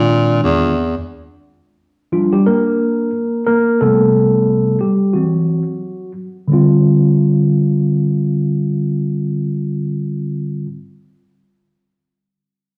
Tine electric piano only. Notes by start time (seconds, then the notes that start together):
Already playing: D#3 G#3 C4 D4 F4
2.12 F3 G3 D4 F4
2.33 G3 G4
2.46 A#3 A#4
3.47 A#3 A#4
3.81 C3 G3 A3 B3 A4
4.81 G3 G4
5.13 E3 F#3 C4 F#4
6.48 D3 G3
6.52 C4 F4